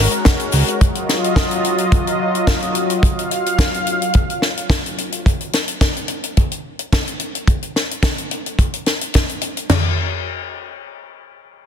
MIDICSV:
0, 0, Header, 1, 4, 480
1, 0, Start_track
1, 0, Key_signature, -6, "minor"
1, 0, Tempo, 555556
1, 700, Time_signature, 4, 2, 24, 8
1, 10078, End_track
2, 0, Start_track
2, 0, Title_t, "Analog synth pad"
2, 0, Program_c, 0, 89
2, 0, Note_on_c, 0, 56, 83
2, 0, Note_on_c, 0, 66, 76
2, 0, Note_on_c, 0, 70, 79
2, 0, Note_on_c, 0, 73, 73
2, 666, Note_off_c, 0, 56, 0
2, 667, Note_off_c, 0, 66, 0
2, 681, Note_off_c, 0, 70, 0
2, 699, Note_on_c, 0, 65, 79
2, 700, Note_on_c, 0, 75, 89
2, 701, Note_on_c, 0, 54, 82
2, 2601, Note_off_c, 0, 75, 0
2, 2618, Note_on_c, 0, 77, 89
2, 4505, Note_off_c, 0, 65, 0
2, 4506, Note_off_c, 0, 54, 0
2, 4506, Note_off_c, 0, 73, 0
2, 4520, Note_off_c, 0, 77, 0
2, 10078, End_track
3, 0, Start_track
3, 0, Title_t, "Analog synth bass"
3, 0, Program_c, 1, 38
3, 460, Note_on_c, 1, 37, 80
3, 547, Note_off_c, 1, 37, 0
3, 10078, End_track
4, 0, Start_track
4, 0, Title_t, "Drums"
4, 102, Note_on_c, 9, 42, 47
4, 103, Note_on_c, 9, 82, 38
4, 188, Note_off_c, 9, 42, 0
4, 189, Note_off_c, 9, 82, 0
4, 217, Note_on_c, 9, 38, 116
4, 220, Note_on_c, 9, 82, 55
4, 224, Note_on_c, 9, 42, 86
4, 226, Note_on_c, 9, 36, 96
4, 303, Note_off_c, 9, 38, 0
4, 306, Note_off_c, 9, 82, 0
4, 310, Note_off_c, 9, 42, 0
4, 312, Note_off_c, 9, 36, 0
4, 342, Note_on_c, 9, 42, 45
4, 348, Note_on_c, 9, 82, 26
4, 428, Note_off_c, 9, 42, 0
4, 435, Note_off_c, 9, 82, 0
4, 450, Note_on_c, 9, 46, 96
4, 454, Note_on_c, 9, 82, 95
4, 536, Note_off_c, 9, 46, 0
4, 541, Note_off_c, 9, 82, 0
4, 584, Note_on_c, 9, 82, 39
4, 589, Note_on_c, 9, 42, 53
4, 670, Note_off_c, 9, 82, 0
4, 676, Note_off_c, 9, 42, 0
4, 700, Note_on_c, 9, 42, 103
4, 702, Note_on_c, 9, 36, 93
4, 786, Note_off_c, 9, 42, 0
4, 788, Note_off_c, 9, 36, 0
4, 823, Note_on_c, 9, 42, 53
4, 909, Note_off_c, 9, 42, 0
4, 944, Note_on_c, 9, 38, 46
4, 944, Note_on_c, 9, 42, 67
4, 1030, Note_off_c, 9, 38, 0
4, 1031, Note_off_c, 9, 42, 0
4, 1073, Note_on_c, 9, 42, 44
4, 1160, Note_off_c, 9, 42, 0
4, 1176, Note_on_c, 9, 36, 98
4, 1181, Note_on_c, 9, 42, 81
4, 1182, Note_on_c, 9, 38, 104
4, 1262, Note_off_c, 9, 36, 0
4, 1267, Note_off_c, 9, 42, 0
4, 1268, Note_off_c, 9, 38, 0
4, 1304, Note_on_c, 9, 42, 55
4, 1391, Note_off_c, 9, 42, 0
4, 1421, Note_on_c, 9, 42, 68
4, 1508, Note_off_c, 9, 42, 0
4, 1540, Note_on_c, 9, 42, 51
4, 1627, Note_off_c, 9, 42, 0
4, 1658, Note_on_c, 9, 42, 80
4, 1659, Note_on_c, 9, 36, 110
4, 1745, Note_off_c, 9, 42, 0
4, 1746, Note_off_c, 9, 36, 0
4, 1790, Note_on_c, 9, 42, 50
4, 1876, Note_off_c, 9, 42, 0
4, 2028, Note_on_c, 9, 42, 45
4, 2115, Note_off_c, 9, 42, 0
4, 2135, Note_on_c, 9, 42, 83
4, 2136, Note_on_c, 9, 36, 92
4, 2138, Note_on_c, 9, 38, 99
4, 2222, Note_off_c, 9, 36, 0
4, 2222, Note_off_c, 9, 42, 0
4, 2224, Note_off_c, 9, 38, 0
4, 2267, Note_on_c, 9, 42, 45
4, 2354, Note_off_c, 9, 42, 0
4, 2374, Note_on_c, 9, 42, 67
4, 2461, Note_off_c, 9, 42, 0
4, 2504, Note_on_c, 9, 42, 52
4, 2590, Note_off_c, 9, 42, 0
4, 2617, Note_on_c, 9, 36, 103
4, 2624, Note_on_c, 9, 42, 88
4, 2703, Note_off_c, 9, 36, 0
4, 2711, Note_off_c, 9, 42, 0
4, 2754, Note_on_c, 9, 42, 53
4, 2840, Note_off_c, 9, 42, 0
4, 2861, Note_on_c, 9, 42, 68
4, 2947, Note_off_c, 9, 42, 0
4, 2992, Note_on_c, 9, 42, 50
4, 3079, Note_off_c, 9, 42, 0
4, 3098, Note_on_c, 9, 36, 89
4, 3098, Note_on_c, 9, 42, 95
4, 3106, Note_on_c, 9, 38, 99
4, 3184, Note_off_c, 9, 36, 0
4, 3184, Note_off_c, 9, 42, 0
4, 3193, Note_off_c, 9, 38, 0
4, 3234, Note_on_c, 9, 42, 46
4, 3320, Note_off_c, 9, 42, 0
4, 3340, Note_on_c, 9, 42, 63
4, 3427, Note_off_c, 9, 42, 0
4, 3471, Note_on_c, 9, 42, 53
4, 3557, Note_off_c, 9, 42, 0
4, 3573, Note_on_c, 9, 42, 76
4, 3585, Note_on_c, 9, 36, 100
4, 3659, Note_off_c, 9, 42, 0
4, 3671, Note_off_c, 9, 36, 0
4, 3713, Note_on_c, 9, 42, 45
4, 3799, Note_off_c, 9, 42, 0
4, 3820, Note_on_c, 9, 38, 52
4, 3907, Note_off_c, 9, 38, 0
4, 3952, Note_on_c, 9, 42, 48
4, 4038, Note_off_c, 9, 42, 0
4, 4057, Note_on_c, 9, 36, 86
4, 4063, Note_on_c, 9, 38, 102
4, 4065, Note_on_c, 9, 42, 81
4, 4144, Note_off_c, 9, 36, 0
4, 4149, Note_off_c, 9, 38, 0
4, 4151, Note_off_c, 9, 42, 0
4, 4199, Note_on_c, 9, 42, 49
4, 4285, Note_off_c, 9, 42, 0
4, 4305, Note_on_c, 9, 42, 64
4, 4392, Note_off_c, 9, 42, 0
4, 4427, Note_on_c, 9, 42, 54
4, 4513, Note_off_c, 9, 42, 0
4, 4545, Note_on_c, 9, 36, 101
4, 4548, Note_on_c, 9, 42, 91
4, 4631, Note_off_c, 9, 36, 0
4, 4635, Note_off_c, 9, 42, 0
4, 4670, Note_on_c, 9, 42, 46
4, 4757, Note_off_c, 9, 42, 0
4, 4780, Note_on_c, 9, 42, 67
4, 4787, Note_on_c, 9, 38, 57
4, 4867, Note_off_c, 9, 42, 0
4, 4874, Note_off_c, 9, 38, 0
4, 4905, Note_on_c, 9, 42, 52
4, 4991, Note_off_c, 9, 42, 0
4, 5020, Note_on_c, 9, 36, 96
4, 5020, Note_on_c, 9, 42, 87
4, 5021, Note_on_c, 9, 38, 105
4, 5106, Note_off_c, 9, 36, 0
4, 5106, Note_off_c, 9, 42, 0
4, 5108, Note_off_c, 9, 38, 0
4, 5154, Note_on_c, 9, 42, 44
4, 5240, Note_off_c, 9, 42, 0
4, 5252, Note_on_c, 9, 42, 73
4, 5339, Note_off_c, 9, 42, 0
4, 5388, Note_on_c, 9, 42, 52
4, 5474, Note_off_c, 9, 42, 0
4, 5502, Note_on_c, 9, 42, 83
4, 5507, Note_on_c, 9, 36, 102
4, 5589, Note_off_c, 9, 42, 0
4, 5593, Note_off_c, 9, 36, 0
4, 5629, Note_on_c, 9, 42, 54
4, 5715, Note_off_c, 9, 42, 0
4, 5866, Note_on_c, 9, 42, 50
4, 5953, Note_off_c, 9, 42, 0
4, 5983, Note_on_c, 9, 36, 84
4, 5983, Note_on_c, 9, 42, 93
4, 5990, Note_on_c, 9, 38, 98
4, 6069, Note_off_c, 9, 42, 0
4, 6070, Note_off_c, 9, 36, 0
4, 6076, Note_off_c, 9, 38, 0
4, 6113, Note_on_c, 9, 42, 47
4, 6200, Note_off_c, 9, 42, 0
4, 6217, Note_on_c, 9, 42, 67
4, 6303, Note_off_c, 9, 42, 0
4, 6350, Note_on_c, 9, 42, 50
4, 6437, Note_off_c, 9, 42, 0
4, 6458, Note_on_c, 9, 36, 99
4, 6459, Note_on_c, 9, 42, 96
4, 6545, Note_off_c, 9, 36, 0
4, 6546, Note_off_c, 9, 42, 0
4, 6588, Note_on_c, 9, 42, 48
4, 6675, Note_off_c, 9, 42, 0
4, 6706, Note_on_c, 9, 38, 53
4, 6708, Note_on_c, 9, 42, 72
4, 6793, Note_off_c, 9, 38, 0
4, 6795, Note_off_c, 9, 42, 0
4, 6837, Note_on_c, 9, 42, 47
4, 6923, Note_off_c, 9, 42, 0
4, 6934, Note_on_c, 9, 42, 95
4, 6935, Note_on_c, 9, 36, 94
4, 6940, Note_on_c, 9, 38, 115
4, 7020, Note_off_c, 9, 42, 0
4, 7021, Note_off_c, 9, 36, 0
4, 7026, Note_off_c, 9, 38, 0
4, 7069, Note_on_c, 9, 42, 50
4, 7155, Note_off_c, 9, 42, 0
4, 7180, Note_on_c, 9, 42, 72
4, 7267, Note_off_c, 9, 42, 0
4, 7310, Note_on_c, 9, 42, 48
4, 7397, Note_off_c, 9, 42, 0
4, 7418, Note_on_c, 9, 36, 91
4, 7423, Note_on_c, 9, 42, 89
4, 7505, Note_off_c, 9, 36, 0
4, 7510, Note_off_c, 9, 42, 0
4, 7547, Note_on_c, 9, 42, 58
4, 7634, Note_off_c, 9, 42, 0
4, 7657, Note_on_c, 9, 42, 48
4, 7662, Note_on_c, 9, 38, 59
4, 7743, Note_off_c, 9, 42, 0
4, 7748, Note_off_c, 9, 38, 0
4, 7786, Note_on_c, 9, 42, 57
4, 7873, Note_off_c, 9, 42, 0
4, 7895, Note_on_c, 9, 42, 89
4, 7907, Note_on_c, 9, 36, 79
4, 7907, Note_on_c, 9, 38, 93
4, 7981, Note_off_c, 9, 42, 0
4, 7993, Note_off_c, 9, 36, 0
4, 7993, Note_off_c, 9, 38, 0
4, 8030, Note_on_c, 9, 42, 44
4, 8116, Note_off_c, 9, 42, 0
4, 8134, Note_on_c, 9, 42, 74
4, 8221, Note_off_c, 9, 42, 0
4, 8267, Note_on_c, 9, 42, 51
4, 8354, Note_off_c, 9, 42, 0
4, 8378, Note_on_c, 9, 38, 88
4, 8378, Note_on_c, 9, 43, 88
4, 8378, Note_on_c, 9, 49, 75
4, 8464, Note_off_c, 9, 38, 0
4, 8464, Note_off_c, 9, 43, 0
4, 8464, Note_off_c, 9, 49, 0
4, 10078, End_track
0, 0, End_of_file